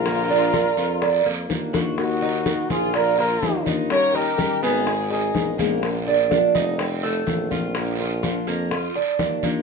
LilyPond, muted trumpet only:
\new Staff \with { instrumentName = "Muted trumpet" } { \time 4/4 \key bes \phrygian \tempo 4 = 125 bes'2. r4 | ges'4. aes'8 bes'8 bes'4 r8 | des''8 bes'4 aes'4 aes'4 r8 | r1 |
r1 | }